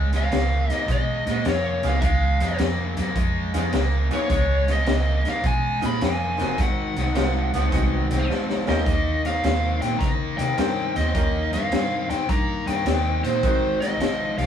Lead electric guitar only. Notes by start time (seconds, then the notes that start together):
0.16 F5
0.71 D#5
0.92 D#5
1.48 C#5
1.87 F5
2.01 E5
2.06 F5
4.14 C#5
4.72 D#5
5.29 F5
5.47 G#5
5.86 B5
6.04 G#5
6.62 F#5
8.69 D#5
9.26 F5
9.82 G5
9.99 A#5
10.38 G5
10.96 D#5
11.54 F5
12.10 G5
12.29 A#5
12.67 G5
13.24 C5
13.81 D#5
14.38 F5